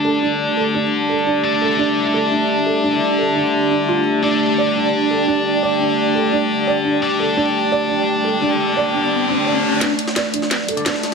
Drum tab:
RD |----------------|----------------|----------------|----------------|
HH |----------------|----------------|----------------|----------------|
SD |----------------|----------------|----------------|----------------|

RD |----------------|----------------|----------------|x-x-x-x-x-x-x-x-|
HH |----------------|----------------|----------------|x-x-x-x-x-xxx-x-|
SD |----------------|----------------|----------------|o--oo--oo---ooo-|